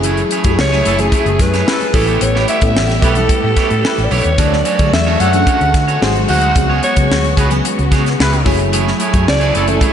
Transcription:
Already playing: F#1 F#3 A3 C#4 E4 G#4
0.02 A3 E4 G#4 C#5, closed hi-hat, muted conga, low conga
0.17 closed hi-hat, high conga
0.31 A3 E4 G#4 C#5, closed hi-hat
0.44 F#2 F#3 A3 C#4 E4 G4 G#4 C#5, kick, closed hi-hat, high conga
0.52 G#4
0.58 C#2 C#5, muted clean electric guitar stroke, snare
0.72 A3 E4 G#4 C#5, snare
0.85 F#1 A3 C#4 E4 G#4 A4 C#5, closed hi-hat, muted conga, high conga
0.98 F#3 A3 C#4 E4 G#4, muted clean electric guitar stroke, closed hi-hat, low conga
1.12 A3 E4 G#4 C#5, kick, closed hi-hat, muted conga, high conga
1.26 F#1, muted clean electric guitar stroke, closed hi-hat
1.39 F#2 B4, muted clean electric guitar stroke, kick, snare, closed hi-hat, muted conga, high conga
1.53 A3 E4 G#4 C#5, snare, closed hi-hat
1.67 C#4 E4 A4, muted clean electric guitar stroke, snare, muted conga
1.81 muted clean electric guitar stroke, closed hi-hat, high conga
1.93 A1 G3 A3 B3 C#4 E4 G4 A4 C#5, kick, open hi-hat, low conga
2.07 B3 E4 G4 C#5, closed hi-hat
2.21 A1 C#5, muted clean electric guitar stroke, closed hi-hat, low conga
2.35 B3 E4 G4 C#5, snare, high conga
2.48 B3 E4 G4 C#5 E5, closed hi-hat, muted conga
2.61 A2 G3 B3 C#4 E4 A4, muted clean electric guitar stroke, kick, closed hi-hat, high conga
2.75 A1, snare, muted conga
2.89 muted clean electric guitar stroke, snare, closed hi-hat
3.02 B1 B3 E4 G4 A4 B4 C#5, kick, closed hi-hat, muted conga, high conga
3.15 G3 B3 C#4 E4 A4, muted clean electric guitar stroke, closed hi-hat, low conga
3.29 muted clean electric guitar stroke, kick, closed hi-hat, muted conga, high conga
3.43 A2, muted clean electric guitar stroke
3.56 B3 E4 G4 C#5, kick, snare, closed hi-hat, high conga
3.70 A2, muted clean electric guitar stroke, closed hi-hat
3.84 E4 G4 B4, muted clean electric guitar stroke, snare, muted conga
3.98 A1, muted clean electric guitar stroke, closed hi-hat, high conga
4.05 D5
4.10 B1 B3 E4 G4 C#5, open hi-hat, muted conga, low conga
4.24 D#2, muted clean electric guitar stroke, closed hi-hat
4.38 D2 D3 F#3 A3 C#4 D4 F#4 A4 C#5 D5, kick, closed hi-hat, muted conga, low conga
4.53 snare, high conga
4.65 C#4 F#4 A4 C#5, closed hi-hat, muted conga
4.79 D3 F#3 A3 C#4 D4 F#4 G#4 A4 C#5, kick, closed hi-hat, high conga
4.87 A4
4.93 E2 E5, muted clean electric guitar stroke, snare
5.06 C#4 F#4 A4 C#5
5.19 F#2 C#4 D4 F#4 A4 C#5 F#5, closed hi-hat, muted conga, high conga
5.33 F#3 A3 C#4 D4 A4, muted clean electric guitar stroke, closed hi-hat, low conga
5.47 C#4 F#4 A4 C#5, kick, closed hi-hat
5.61 D2, muted clean electric guitar stroke, closed hi-hat
5.74 D3, muted clean electric guitar stroke, kick, snare, closed hi-hat, muted conga, high conga
5.88 C#4 F#4 A4 C#5, closed hi-hat
6.01 G#1 F#3 G#3 C4 D#4 F#4 G#4 C5, muted clean electric guitar stroke, snare, muted conga
6.15 muted clean electric guitar stroke, closed hi-hat, high conga
6.28 D2 G#3 D#4 F#4 C5 F#5, open hi-hat, muted conga, low conga
6.42 G#3 D#4 F#4 C5, closed hi-hat
6.55 C#2 C#3 F#3 G#3 B3 C#4 G#4, muted clean electric guitar stroke, kick, closed hi-hat, muted conga, low conga
6.70 B3 F#4 G#4 C#5, high conga
6.83 B3 F#4 G#4 C#5, closed hi-hat, muted conga
6.96 C#3 F#3 G#3 B3 C#4 G#4, muted clean electric guitar stroke, kick, closed hi-hat, high conga
7.10 D2, snare, muted conga
7.24 muted clean electric guitar stroke, closed hi-hat
7.37 C#2 B3 F#4 G#4 B4 C#5, kick, closed hi-hat, muted conga, high conga
7.50 F#3 G#3 B3 C#4 G#4, muted clean electric guitar stroke, closed hi-hat, low conga
7.64 muted clean electric guitar stroke, closed hi-hat, high conga
7.78 C#2, muted clean electric guitar stroke, closed hi-hat
7.91 C#3 B3 F#4 G#4 C#5, kick, snare, closed hi-hat, muted conga, high conga
8.05 muted clean electric guitar stroke, snare, closed hi-hat
8.18 C#2 E4 G#4 B4, muted clean electric guitar stroke, snare
8.32 muted clean electric guitar stroke, closed hi-hat, high conga
8.45 F#1 F#3 A3 C#4 E4 G#4 C#5 G#5, kick, open hi-hat, muted conga, low conga
8.59 muted clean electric guitar stroke, closed hi-hat
8.72 A3 E4 G#4 C#5, closed hi-hat, muted conga, low conga
8.87 snare, high conga
9.00 A3 E4 G#4 C#5, closed hi-hat, muted conga
9.13 F#2 F#3 A3 C#4 E4 G#4 C#5, kick, closed hi-hat, high conga
9.27 C#2 D5, muted clean electric guitar stroke, snare, muted conga
9.40 A3 E4 G#4 C#5, closed hi-hat
9.54 F#1 A3 C#4 E4 G#4 A4 C#5, closed hi-hat, muted conga, high conga
9.67 F#3 G#3 C#4 E4 A4 G#5, muted clean electric guitar stroke, closed hi-hat, low conga
9.74 A3
9.81 A3 E4 G#4 C#5, kick, closed hi-hat, muted conga, high conga

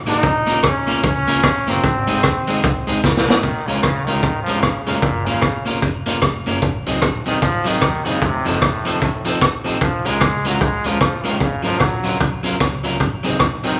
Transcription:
0.06 G#1 A#3 D#4 F#4 A#4, closed hi-hat
0.23 A#1, kick, closed hi-hat
0.47 A#3 C#4 F4 A#4, closed hi-hat
0.63 F2 C#4, kick, cross-stick, closed hi-hat
0.87 A#3 C#4 F4 A#4, closed hi-hat
1.03 C#2 C#4, kick, closed hi-hat
1.27 A#3 C#4 F4 A#4, closed hi-hat
1.43 kick, cross-stick, closed hi-hat
1.67 F#1 A#3 C4 C#4 F4 A#4, closed hi-hat
1.83 G#1, kick, closed hi-hat
2.07 G#3 C4 D#4 G#4, closed hi-hat
2.23 D#2, kick, cross-stick, closed hi-hat
2.47 G#3 C4 D#4 G#4, closed hi-hat
2.63 C2, kick, closed hi-hat
2.87 G#3 C4 D#4 G#4, closed hi-hat
3.04 C#2, kick, snare
3.17 snare
3.28 G#1 G#3 C4 D#4 G#4, snare
3.42 A#1 D#3, kick, closed hi-hat
3.67 C2 C#3 G#3 C#4 F4 A#4, closed hi-hat
3.81 C#2 C#3, kick, cross-stick, closed hi-hat
4.05 D#3 G#3 C#4 F4, closed hi-hat
4.09 A#4
4.22 G#1, kick, closed hi-hat
4.43 F3 G#3, closed hi-hat
4.48 C#4 F4 A#4
4.60 A#1 C#3, kick, cross-stick, closed hi-hat
4.85 F1 C#3 G#3 C#4 F4 A#4, closed hi-hat
5.00 F#1 A#2, kick, closed hi-hat
5.25 G#1 C#3 A#3 C#4 F4 A#4, closed hi-hat
5.42 A#1, kick, cross-stick, closed hi-hat
5.65 A#3 C#4 F4 A#4, closed hi-hat
5.82 F#1, kick, closed hi-hat
6.06 A#3 C#4 F4 A#4, closed hi-hat
6.21 F1, kick, cross-stick, closed hi-hat
6.46 F#1 A#3 C#4 F4 A#4, closed hi-hat
6.62 G#1, kick, closed hi-hat
6.86 C2 F#3 C4 D#4 G#4, closed hi-hat
7.02 A#1, kick, cross-stick, closed hi-hat
7.26 D#3 F#3 C4 D#4 G#4, closed hi-hat
7.42 G#1 F3, kick, closed hi-hat
7.64 D#3 F#3 C4 D#4 G#4, closed hi-hat
7.81 D#2, kick, cross-stick, closed hi-hat
8.05 F#1 C#3 F#3 C4 D#4 G#4, closed hi-hat
8.21 F1 C3, kick, closed hi-hat
8.45 F#1 A2 F3 C4 D#4 A4, closed hi-hat
8.62 F1, kick, cross-stick, closed hi-hat
8.85 F3 C4 D#4 A4, closed hi-hat
9.02 A1, kick, closed hi-hat
9.25 F3 C4 D#4 A4, closed hi-hat
9.41 C2, kick, cross-stick, closed hi-hat
9.64 A1 F3 C4 D#4 A4, closed hi-hat
9.81 A#1 F3, kick, closed hi-hat
10.05 C2 G#3 C#4 F4 A#4, closed hi-hat
10.21 C#2, kick, cross-stick, closed hi-hat
10.44 F#3 G#3 C#4 F4 A#4, closed hi-hat
10.61 C2 G#3, kick, closed hi-hat
10.84 F3 G#3 C#4 F4 A#4, closed hi-hat
11.00 A#1 F3, kick, cross-stick, closed hi-hat
11.24 D#3 G#3 C#4 F4 A#4, closed hi-hat
11.40 F#1 C#3, kick, closed hi-hat
11.63 G#1 F3 F#3 C#4 F4 A#4, closed hi-hat
11.80 A#1 F#3, kick, cross-stick, closed hi-hat
12.04 F#3 C#4 F4 A#4, closed hi-hat
12.20 C2, kick, closed hi-hat
12.43 F#3 C#4 F4 A#4, closed hi-hat
12.60 C#2, kick, cross-stick, closed hi-hat
12.84 F#3 C#4 F4 A#4, closed hi-hat
13.00 G#1, kick, closed hi-hat
13.23 C2 F#3 C4 D#4 G#4, closed hi-hat
13.39 A#1, kick, cross-stick, closed hi-hat
13.63 D#3 F#3 C4 D#4 G#4, closed hi-hat

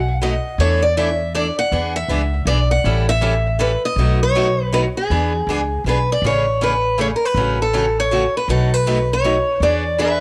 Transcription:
Already playing: B1 F#5
0.22 B2 F#3 A3 D#4 F#4 D#5
0.58 E2 E3 A3 D4 E4 A4 C#5
0.82 D5
0.97 E3 A3 D4 E4 A4 E5
1.34 E3 A3 D4 E4 A4 D5
1.59 F#5
1.72 E2 E3 B3 D4 G#4
1.96 E5
2.08 C#2 E3 B3 D4 G#4
2.45 B1 E3 B3 D4 G#4 D5
2.71 F#5
2.84 A1 E3 G3 C#4 E4 A4
3.09 E5
3.21 E3 G3 C#4 E4 A4
3.59 E3 G3 C#4 E4 A4 B4
3.85 D#5
3.96 B1 B2 F#3 A3 D#4 F#4
4.23 C#5
4.35 B2 F#3 A3 D#4 F#4
4.72 B2 F#3 A3 D#4 F#4 B4
4.97 G#4
5.10 E2 E3 B3 D4 G#4
5.47 C#2 E3 B3 D4 G#4
5.84 B1 E3 B3 D4 G#4
5.89 B4
6.12 D5
6.22 A1 C#3 E3 A3 C#4 G#4
6.26 C#5
6.61 C#3 E3 A3 C#4 G#4 B4
6.98 C#3 E3 A3 C#4 G#4 C#5
7.16 A#4
7.25 B4
7.34 A1 C#3 F#3 A3 C#4 F#4
7.62 A4
7.73 C#3 F#3 A3 C#4 F#4
8.00 C#5
8.11 C#3 F#3 A3 C#4 F#4
8.37 B4
8.48 B1 B2 F#3 A3 D#4 F#4 A4
8.74 B4
8.86 B2 F#3 A3 D#4 F#4
9.13 C#5
9.24 B2 F#3 A3 D#4 F#4
9.60 E2 E3 B3 D4 G#4 D5
9.98 E3 B3 D4 G#4 B4 E5

